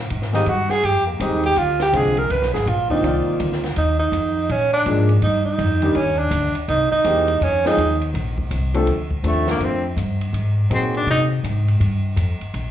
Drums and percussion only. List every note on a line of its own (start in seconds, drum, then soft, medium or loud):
0.10 ride medium
0.22 snare soft
0.34 snare soft
0.46 hi-hat pedal soft
0.46 ride medium
0.69 snare soft
0.83 ride medium
1.20 hi-hat pedal medium
1.20 ride medium
1.43 ride soft
1.56 ride medium
1.80 snare soft
1.80 ride soft
1.93 hi-hat pedal soft
1.93 ride medium
2.17 ride soft
2.30 ride medium
2.42 snare soft
2.55 snare soft
2.67 hi-hat pedal medium
2.67 ride medium
2.90 kick medium
2.90 ride soft
3.04 ride medium
3.40 hi-hat pedal medium
3.40 ride medium
3.52 snare soft
3.63 snare soft
3.63 ride soft
3.76 ride medium
4.13 hi-hat pedal medium
4.13 ride medium
4.49 ride medium
4.86 hi-hat pedal medium
4.86 ride medium
5.09 ride soft
5.22 ride medium
5.59 hi-hat pedal medium
5.59 ride medium
5.82 ride soft
5.95 ride medium
6.31 hi-hat pedal medium
6.31 ride medium
6.55 ride soft
6.68 ride medium
7.04 hi-hat pedal medium
7.04 ride medium
7.28 ride soft
7.42 ride medium
7.66 snare medium
7.78 hi-hat pedal medium
7.78 ride medium
8.01 ride soft
8.15 ride medium
8.38 kick medium
8.51 hi-hat pedal medium
8.51 ride medium
8.74 ride soft
8.87 ride medium
9.11 kick soft
9.24 hi-hat pedal soft
9.24 ride medium
9.48 snare medium
9.48 ride soft
9.61 ride medium
9.97 hi-hat pedal soft
9.97 ride medium
10.21 ride soft
10.34 ride medium
10.71 hi-hat pedal medium
10.71 ride medium
10.94 ride soft
11.07 ride medium
11.44 hi-hat pedal medium
11.44 ride medium
11.68 ride soft
11.81 ride medium
12.17 hi-hat pedal soft
12.17 ride medium
12.41 ride soft
12.54 ride medium